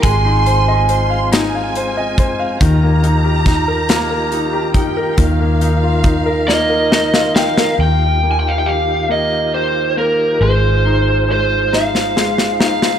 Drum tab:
HH |x-x-x-x-x-x-|x-x-x-x-x-x-|x-x-x-------|------------|
SD |------o-----|----o-o-----|------o-oooo|------------|
BD |o---------o-|o---o-----o-|o---o-------|------------|

HH |------------|
SD |------oooooo|
BD |------------|